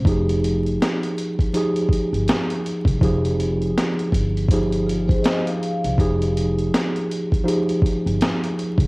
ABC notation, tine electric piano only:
X:1
M:4/4
L:1/8
Q:"Swing 16ths" 1/4=81
K:Fm
V:1 name="Tine electric piano"
[F,EGA]4 [F,EGA]4 | [F,EGA]4 [F,EGA]4 | [F,EGA]4 [F,EGA]4 |]